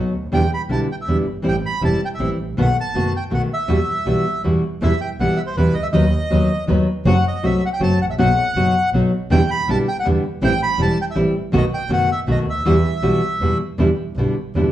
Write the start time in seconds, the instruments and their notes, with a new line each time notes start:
Already playing: double bass B1, nylon-string guitar B2 F#3 B3 D#4 F#4
0.14 double bass D2
0.32 double bass E2, nylon-string guitar B2 D3 G3 B3 E4, bandoneon G5
0.54 bandoneon B5
0.69 double bass B1, nylon-string guitar B2 D3 G3 B3 E4, bandoneon A5
0.92 bandoneon G5
1.01 bandoneon E5
1.07 double bass E2, nylon-string guitar B2 D3 G3 B3 E4
1.26 double bass G1
1.42 double bass A1, nylon-string guitar E3 G3 C4 E4
1.48 bandoneon G5
1.66 bandoneon B5
1.81 double bass E1, nylon-string guitar E3 G3 C4 E4, bandoneon A5
2.05 bandoneon G5
2.15 bandoneon E5
2.19 double bass A1, nylon-string guitar E3 G3 C4 E4
2.39 double bass A1
2.57 double bass B1, nylon-string guitar B2 D#3 A3 B3 F#4
2.62 bandoneon F#5
2.80 bandoneon A5
2.95 double bass F#1, nylon-string guitar B2 D#3 A3 B3 F#4
3.16 bandoneon G5
3.30 double bass B1, nylon-string guitar B2 D#3 A3 B3 F#4, bandoneon F#5
3.53 bandoneon E5
3.68 double bass E2, nylon-string guitar B2 E3 G3 B3 F#4
4.06 double bass B1, nylon-string guitar B2 E3 G3 B3 F#4
4.44 double bass E2, nylon-string guitar B2 E3 G3 B3 F#4
4.82 double bass E2, nylon-string guitar B2 E3 G3 B3 E4, bandoneon E5
5.01 bandoneon G5
5.20 double bass B1, nylon-string guitar B2 E3 G3 B3 E4, bandoneon F#5
5.37 bandoneon E5
5.47 bandoneon C5
5.57 double bass E2, nylon-string guitar B2 E3 G3 B3 E4, bandoneon B4
5.74 double bass C#2, bandoneon D#5
5.83 bandoneon E5
5.93 double bass D#2, nylon-string guitar D#3 F#3 B3 D#4 B4, bandoneon D#5
6.31 double bass D#2, nylon-string guitar D#3 F#3 B3 D#4 B4
6.67 double bass D#2, nylon-string guitar D#3 F#3 B3 D#4 B4
7.05 double bass F#1, nylon-string guitar F#3 A3 C4 F#4, bandoneon F#5
7.28 bandoneon D#5
7.43 double bass C2, nylon-string guitar F#3 A3 C4 F#4, bandoneon E5
7.66 bandoneon F#5
7.73 bandoneon G5
7.80 double bass F#1, nylon-string guitar F#3 A3 C4 F#4, bandoneon A5
8.00 double bass A1, bandoneon F#5
8.10 bandoneon E5
8.18 double bass B1, nylon-string guitar B2 F#3 B3 D#4 F#4, bandoneon F#5
8.55 double bass F#1, nylon-string guitar B2 F#3 B3 D#4 F#4
8.93 double bass B1, nylon-string guitar B2 F#3 B3 D#4 F#4
9.30 double bass E2, nylon-string guitar B2 D3 G3 B3 E4, bandoneon G5
9.51 bandoneon B5
9.68 double bass B1, nylon-string guitar B2 D3 G3 B3 E4, bandoneon A5
9.88 bandoneon G5
10.00 bandoneon F#5
10.04 double bass E2, nylon-string guitar B2 D3 G3 B3 E4
10.42 double bass A1, nylon-string guitar E3 G3 C4 E4, bandoneon G5
10.63 bandoneon B5
10.78 double bass E1, nylon-string guitar E3 G3 C4 E4, bandoneon A5
11.02 bandoneon G5
11.11 bandoneon E5
11.15 double bass A1, nylon-string guitar E3 G3 C4 E4
11.52 double bass B1, nylon-string guitar B2 D#3 A3 B3 F#4
11.57 bandoneon D#5
11.74 bandoneon G5
11.89 double bass F#1, nylon-string guitar B2 D#3 A3 B3 F#4
11.93 bandoneon F#5
12.12 bandoneon E5
12.27 double bass B1, nylon-string guitar B2 D#3 A3 B3 F#4
12.31 bandoneon D#5
12.47 double bass D2, bandoneon E5
12.65 double bass E2, nylon-string guitar B2 E3 G3 B3 F#4
13.02 double bass B1, nylon-string guitar B2 E3 G3 B3 F#4
13.41 double bass E2, nylon-string guitar B2 E3 G3 B3 F#4
13.78 double bass E2, nylon-string guitar B2 D3 G3 B3 E4
14.16 double bass B1, nylon-string guitar B2 D3 G3 B3 E4
14.55 double bass E2, nylon-string guitar B2 D3 G3 B3 E4